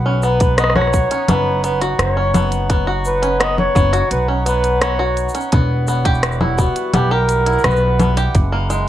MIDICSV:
0, 0, Header, 1, 6, 480
1, 0, Start_track
1, 0, Key_signature, 5, "major"
1, 0, Tempo, 705882
1, 1836, Time_signature, 4, 2, 24, 8
1, 6042, End_track
2, 0, Start_track
2, 0, Title_t, "Flugelhorn"
2, 0, Program_c, 0, 56
2, 157, Note_on_c, 0, 71, 94
2, 394, Note_on_c, 0, 75, 109
2, 404, Note_off_c, 0, 71, 0
2, 511, Note_off_c, 0, 75, 0
2, 515, Note_on_c, 0, 73, 97
2, 876, Note_on_c, 0, 71, 98
2, 886, Note_off_c, 0, 73, 0
2, 1116, Note_off_c, 0, 71, 0
2, 1119, Note_on_c, 0, 71, 87
2, 1226, Note_off_c, 0, 71, 0
2, 1358, Note_on_c, 0, 73, 89
2, 1692, Note_off_c, 0, 73, 0
2, 2086, Note_on_c, 0, 71, 97
2, 2324, Note_on_c, 0, 75, 109
2, 2335, Note_off_c, 0, 71, 0
2, 2436, Note_off_c, 0, 75, 0
2, 2440, Note_on_c, 0, 73, 104
2, 2773, Note_off_c, 0, 73, 0
2, 2799, Note_on_c, 0, 71, 89
2, 2906, Note_off_c, 0, 71, 0
2, 3036, Note_on_c, 0, 71, 95
2, 3273, Note_on_c, 0, 73, 99
2, 3284, Note_off_c, 0, 71, 0
2, 3634, Note_off_c, 0, 73, 0
2, 4473, Note_on_c, 0, 66, 81
2, 4717, Note_on_c, 0, 67, 94
2, 4727, Note_off_c, 0, 66, 0
2, 4838, Note_on_c, 0, 70, 114
2, 4848, Note_off_c, 0, 67, 0
2, 5199, Note_on_c, 0, 71, 113
2, 5209, Note_off_c, 0, 70, 0
2, 5557, Note_off_c, 0, 71, 0
2, 6042, End_track
3, 0, Start_track
3, 0, Title_t, "Harmonium"
3, 0, Program_c, 1, 20
3, 0, Note_on_c, 1, 59, 84
3, 0, Note_on_c, 1, 71, 86
3, 0, Note_on_c, 1, 78, 90
3, 145, Note_on_c, 1, 63, 85
3, 583, Note_on_c, 1, 73, 84
3, 744, Note_off_c, 1, 71, 0
3, 3757, Note_off_c, 1, 63, 0
3, 4137, Note_on_c, 1, 64, 73
3, 4480, Note_off_c, 1, 59, 0
3, 4490, Note_on_c, 1, 59, 77
3, 4526, Note_off_c, 1, 73, 0
3, 5674, Note_off_c, 1, 59, 0
3, 5677, Note_on_c, 1, 56, 87
3, 5880, Note_on_c, 1, 70, 75
3, 6042, Note_off_c, 1, 56, 0
3, 6042, Note_off_c, 1, 64, 0
3, 6042, Note_off_c, 1, 70, 0
3, 6042, Note_off_c, 1, 78, 0
3, 6042, End_track
4, 0, Start_track
4, 0, Title_t, "Five-string banjo"
4, 0, Program_c, 2, 105
4, 38, Note_on_c, 2, 61, 79
4, 145, Note_off_c, 2, 61, 0
4, 158, Note_on_c, 2, 59, 78
4, 385, Note_off_c, 2, 59, 0
4, 397, Note_on_c, 2, 59, 80
4, 504, Note_off_c, 2, 59, 0
4, 518, Note_on_c, 2, 66, 96
4, 745, Note_off_c, 2, 66, 0
4, 757, Note_on_c, 2, 61, 77
4, 865, Note_off_c, 2, 61, 0
4, 878, Note_on_c, 2, 59, 84
4, 1105, Note_off_c, 2, 59, 0
4, 1114, Note_on_c, 2, 59, 72
4, 1223, Note_off_c, 2, 59, 0
4, 1234, Note_on_c, 2, 66, 90
4, 1463, Note_off_c, 2, 66, 0
4, 1475, Note_on_c, 2, 61, 82
4, 1583, Note_off_c, 2, 61, 0
4, 1593, Note_on_c, 2, 59, 78
4, 1823, Note_off_c, 2, 59, 0
4, 1833, Note_on_c, 2, 59, 80
4, 1943, Note_off_c, 2, 59, 0
4, 1953, Note_on_c, 2, 66, 100
4, 2182, Note_off_c, 2, 66, 0
4, 2192, Note_on_c, 2, 61, 74
4, 2302, Note_off_c, 2, 61, 0
4, 2311, Note_on_c, 2, 59, 85
4, 2541, Note_off_c, 2, 59, 0
4, 2551, Note_on_c, 2, 59, 80
4, 2661, Note_off_c, 2, 59, 0
4, 2671, Note_on_c, 2, 66, 105
4, 2901, Note_off_c, 2, 66, 0
4, 2913, Note_on_c, 2, 61, 72
4, 3022, Note_off_c, 2, 61, 0
4, 3034, Note_on_c, 2, 59, 70
4, 3263, Note_off_c, 2, 59, 0
4, 3276, Note_on_c, 2, 59, 89
4, 3384, Note_off_c, 2, 59, 0
4, 3394, Note_on_c, 2, 66, 106
4, 3623, Note_off_c, 2, 66, 0
4, 3635, Note_on_c, 2, 61, 78
4, 3744, Note_off_c, 2, 61, 0
4, 3757, Note_on_c, 2, 59, 85
4, 3984, Note_off_c, 2, 59, 0
4, 4000, Note_on_c, 2, 59, 75
4, 4106, Note_off_c, 2, 59, 0
4, 4114, Note_on_c, 2, 67, 100
4, 4343, Note_off_c, 2, 67, 0
4, 4357, Note_on_c, 2, 64, 78
4, 4464, Note_off_c, 2, 64, 0
4, 4477, Note_on_c, 2, 59, 76
4, 4704, Note_off_c, 2, 59, 0
4, 4717, Note_on_c, 2, 59, 91
4, 4825, Note_off_c, 2, 59, 0
4, 4836, Note_on_c, 2, 67, 93
4, 5064, Note_off_c, 2, 67, 0
4, 5074, Note_on_c, 2, 64, 76
4, 5183, Note_off_c, 2, 64, 0
4, 5196, Note_on_c, 2, 59, 86
4, 5424, Note_off_c, 2, 59, 0
4, 5436, Note_on_c, 2, 59, 78
4, 5544, Note_off_c, 2, 59, 0
4, 5557, Note_on_c, 2, 67, 104
4, 5676, Note_off_c, 2, 67, 0
4, 5796, Note_on_c, 2, 58, 83
4, 5904, Note_off_c, 2, 58, 0
4, 5916, Note_on_c, 2, 56, 75
4, 6042, Note_off_c, 2, 56, 0
4, 6042, End_track
5, 0, Start_track
5, 0, Title_t, "Upright bass"
5, 0, Program_c, 3, 32
5, 0, Note_on_c, 3, 35, 92
5, 697, Note_off_c, 3, 35, 0
5, 874, Note_on_c, 3, 30, 85
5, 1295, Note_off_c, 3, 30, 0
5, 1353, Note_on_c, 3, 30, 109
5, 2494, Note_off_c, 3, 30, 0
5, 2556, Note_on_c, 3, 30, 99
5, 2721, Note_off_c, 3, 30, 0
5, 2796, Note_on_c, 3, 35, 82
5, 3576, Note_off_c, 3, 35, 0
5, 3758, Note_on_c, 3, 28, 101
5, 4537, Note_off_c, 3, 28, 0
5, 4716, Note_on_c, 3, 35, 85
5, 5136, Note_off_c, 3, 35, 0
5, 5196, Note_on_c, 3, 35, 110
5, 5616, Note_off_c, 3, 35, 0
5, 5678, Note_on_c, 3, 30, 98
5, 6042, Note_off_c, 3, 30, 0
5, 6042, End_track
6, 0, Start_track
6, 0, Title_t, "Drums"
6, 152, Note_on_c, 9, 82, 78
6, 220, Note_off_c, 9, 82, 0
6, 273, Note_on_c, 9, 42, 42
6, 274, Note_on_c, 9, 82, 43
6, 277, Note_on_c, 9, 36, 106
6, 341, Note_off_c, 9, 42, 0
6, 342, Note_off_c, 9, 82, 0
6, 345, Note_off_c, 9, 36, 0
6, 394, Note_on_c, 9, 37, 83
6, 394, Note_on_c, 9, 42, 49
6, 394, Note_on_c, 9, 82, 34
6, 434, Note_off_c, 9, 37, 0
6, 434, Note_on_c, 9, 37, 64
6, 462, Note_off_c, 9, 42, 0
6, 462, Note_off_c, 9, 82, 0
6, 474, Note_off_c, 9, 37, 0
6, 474, Note_on_c, 9, 37, 58
6, 514, Note_off_c, 9, 37, 0
6, 514, Note_on_c, 9, 37, 48
6, 514, Note_on_c, 9, 64, 64
6, 554, Note_off_c, 9, 37, 0
6, 554, Note_on_c, 9, 37, 43
6, 582, Note_off_c, 9, 64, 0
6, 594, Note_off_c, 9, 37, 0
6, 594, Note_on_c, 9, 37, 33
6, 635, Note_on_c, 9, 82, 84
6, 637, Note_on_c, 9, 36, 98
6, 662, Note_off_c, 9, 37, 0
6, 703, Note_off_c, 9, 82, 0
6, 705, Note_off_c, 9, 36, 0
6, 755, Note_on_c, 9, 42, 44
6, 755, Note_on_c, 9, 82, 44
6, 823, Note_off_c, 9, 42, 0
6, 823, Note_off_c, 9, 82, 0
6, 873, Note_on_c, 9, 42, 53
6, 873, Note_on_c, 9, 64, 78
6, 874, Note_on_c, 9, 82, 33
6, 941, Note_off_c, 9, 42, 0
6, 941, Note_off_c, 9, 64, 0
6, 942, Note_off_c, 9, 82, 0
6, 1114, Note_on_c, 9, 42, 46
6, 1115, Note_on_c, 9, 82, 77
6, 1182, Note_off_c, 9, 42, 0
6, 1183, Note_off_c, 9, 82, 0
6, 1234, Note_on_c, 9, 42, 43
6, 1235, Note_on_c, 9, 82, 42
6, 1302, Note_off_c, 9, 42, 0
6, 1303, Note_off_c, 9, 82, 0
6, 1354, Note_on_c, 9, 37, 97
6, 1354, Note_on_c, 9, 42, 56
6, 1355, Note_on_c, 9, 82, 34
6, 1422, Note_off_c, 9, 37, 0
6, 1422, Note_off_c, 9, 42, 0
6, 1423, Note_off_c, 9, 82, 0
6, 1594, Note_on_c, 9, 42, 29
6, 1594, Note_on_c, 9, 64, 78
6, 1595, Note_on_c, 9, 82, 79
6, 1662, Note_off_c, 9, 42, 0
6, 1662, Note_off_c, 9, 64, 0
6, 1663, Note_off_c, 9, 82, 0
6, 1713, Note_on_c, 9, 42, 43
6, 1714, Note_on_c, 9, 82, 44
6, 1781, Note_off_c, 9, 42, 0
6, 1782, Note_off_c, 9, 82, 0
6, 1834, Note_on_c, 9, 42, 51
6, 1835, Note_on_c, 9, 82, 31
6, 1836, Note_on_c, 9, 36, 109
6, 1902, Note_off_c, 9, 42, 0
6, 1903, Note_off_c, 9, 82, 0
6, 1904, Note_off_c, 9, 36, 0
6, 2073, Note_on_c, 9, 82, 80
6, 2141, Note_off_c, 9, 82, 0
6, 2195, Note_on_c, 9, 42, 42
6, 2195, Note_on_c, 9, 82, 43
6, 2263, Note_off_c, 9, 42, 0
6, 2263, Note_off_c, 9, 82, 0
6, 2315, Note_on_c, 9, 37, 94
6, 2315, Note_on_c, 9, 42, 54
6, 2383, Note_off_c, 9, 37, 0
6, 2383, Note_off_c, 9, 42, 0
6, 2435, Note_on_c, 9, 64, 62
6, 2503, Note_off_c, 9, 64, 0
6, 2555, Note_on_c, 9, 82, 80
6, 2556, Note_on_c, 9, 36, 101
6, 2623, Note_off_c, 9, 82, 0
6, 2624, Note_off_c, 9, 36, 0
6, 2675, Note_on_c, 9, 42, 46
6, 2676, Note_on_c, 9, 82, 45
6, 2743, Note_off_c, 9, 42, 0
6, 2744, Note_off_c, 9, 82, 0
6, 2795, Note_on_c, 9, 42, 56
6, 2796, Note_on_c, 9, 82, 32
6, 2863, Note_off_c, 9, 42, 0
6, 2864, Note_off_c, 9, 82, 0
6, 3035, Note_on_c, 9, 42, 46
6, 3036, Note_on_c, 9, 82, 71
6, 3103, Note_off_c, 9, 42, 0
6, 3104, Note_off_c, 9, 82, 0
6, 3155, Note_on_c, 9, 42, 46
6, 3155, Note_on_c, 9, 82, 38
6, 3223, Note_off_c, 9, 42, 0
6, 3223, Note_off_c, 9, 82, 0
6, 3274, Note_on_c, 9, 37, 101
6, 3274, Note_on_c, 9, 42, 59
6, 3275, Note_on_c, 9, 82, 31
6, 3342, Note_off_c, 9, 37, 0
6, 3342, Note_off_c, 9, 42, 0
6, 3343, Note_off_c, 9, 82, 0
6, 3515, Note_on_c, 9, 42, 31
6, 3516, Note_on_c, 9, 82, 74
6, 3583, Note_off_c, 9, 42, 0
6, 3584, Note_off_c, 9, 82, 0
6, 3595, Note_on_c, 9, 82, 57
6, 3636, Note_off_c, 9, 82, 0
6, 3636, Note_on_c, 9, 42, 46
6, 3636, Note_on_c, 9, 82, 44
6, 3675, Note_off_c, 9, 82, 0
6, 3675, Note_on_c, 9, 82, 51
6, 3704, Note_off_c, 9, 42, 0
6, 3743, Note_off_c, 9, 82, 0
6, 3754, Note_on_c, 9, 42, 56
6, 3755, Note_on_c, 9, 82, 29
6, 3757, Note_on_c, 9, 36, 109
6, 3822, Note_off_c, 9, 42, 0
6, 3823, Note_off_c, 9, 82, 0
6, 3825, Note_off_c, 9, 36, 0
6, 3994, Note_on_c, 9, 82, 76
6, 4062, Note_off_c, 9, 82, 0
6, 4116, Note_on_c, 9, 42, 47
6, 4117, Note_on_c, 9, 82, 18
6, 4118, Note_on_c, 9, 36, 98
6, 4177, Note_off_c, 9, 82, 0
6, 4177, Note_on_c, 9, 82, 24
6, 4184, Note_off_c, 9, 42, 0
6, 4186, Note_off_c, 9, 36, 0
6, 4237, Note_off_c, 9, 82, 0
6, 4237, Note_on_c, 9, 37, 94
6, 4237, Note_on_c, 9, 42, 56
6, 4237, Note_on_c, 9, 82, 29
6, 4296, Note_off_c, 9, 82, 0
6, 4296, Note_on_c, 9, 82, 34
6, 4305, Note_off_c, 9, 37, 0
6, 4305, Note_off_c, 9, 42, 0
6, 4356, Note_on_c, 9, 64, 63
6, 4364, Note_off_c, 9, 82, 0
6, 4424, Note_off_c, 9, 64, 0
6, 4476, Note_on_c, 9, 82, 81
6, 4478, Note_on_c, 9, 36, 95
6, 4544, Note_off_c, 9, 82, 0
6, 4546, Note_off_c, 9, 36, 0
6, 4596, Note_on_c, 9, 42, 47
6, 4597, Note_on_c, 9, 82, 42
6, 4664, Note_off_c, 9, 42, 0
6, 4665, Note_off_c, 9, 82, 0
6, 4716, Note_on_c, 9, 42, 55
6, 4716, Note_on_c, 9, 64, 80
6, 4717, Note_on_c, 9, 82, 33
6, 4784, Note_off_c, 9, 42, 0
6, 4784, Note_off_c, 9, 64, 0
6, 4785, Note_off_c, 9, 82, 0
6, 4955, Note_on_c, 9, 42, 48
6, 4956, Note_on_c, 9, 82, 71
6, 5023, Note_off_c, 9, 42, 0
6, 5024, Note_off_c, 9, 82, 0
6, 5076, Note_on_c, 9, 42, 43
6, 5076, Note_on_c, 9, 82, 19
6, 5115, Note_off_c, 9, 82, 0
6, 5115, Note_on_c, 9, 82, 22
6, 5144, Note_off_c, 9, 42, 0
6, 5157, Note_off_c, 9, 82, 0
6, 5157, Note_on_c, 9, 82, 24
6, 5196, Note_on_c, 9, 37, 96
6, 5196, Note_on_c, 9, 42, 61
6, 5197, Note_off_c, 9, 82, 0
6, 5197, Note_on_c, 9, 82, 34
6, 5239, Note_off_c, 9, 82, 0
6, 5239, Note_on_c, 9, 82, 35
6, 5264, Note_off_c, 9, 37, 0
6, 5264, Note_off_c, 9, 42, 0
6, 5279, Note_off_c, 9, 82, 0
6, 5279, Note_on_c, 9, 82, 36
6, 5347, Note_off_c, 9, 82, 0
6, 5437, Note_on_c, 9, 42, 32
6, 5437, Note_on_c, 9, 64, 82
6, 5438, Note_on_c, 9, 82, 68
6, 5505, Note_off_c, 9, 42, 0
6, 5505, Note_off_c, 9, 64, 0
6, 5506, Note_off_c, 9, 82, 0
6, 5556, Note_on_c, 9, 42, 50
6, 5557, Note_on_c, 9, 82, 44
6, 5624, Note_off_c, 9, 42, 0
6, 5625, Note_off_c, 9, 82, 0
6, 5676, Note_on_c, 9, 42, 58
6, 5677, Note_on_c, 9, 82, 33
6, 5678, Note_on_c, 9, 36, 118
6, 5744, Note_off_c, 9, 42, 0
6, 5745, Note_off_c, 9, 82, 0
6, 5746, Note_off_c, 9, 36, 0
6, 5916, Note_on_c, 9, 42, 33
6, 5917, Note_on_c, 9, 82, 77
6, 5984, Note_off_c, 9, 42, 0
6, 5985, Note_off_c, 9, 82, 0
6, 6042, End_track
0, 0, End_of_file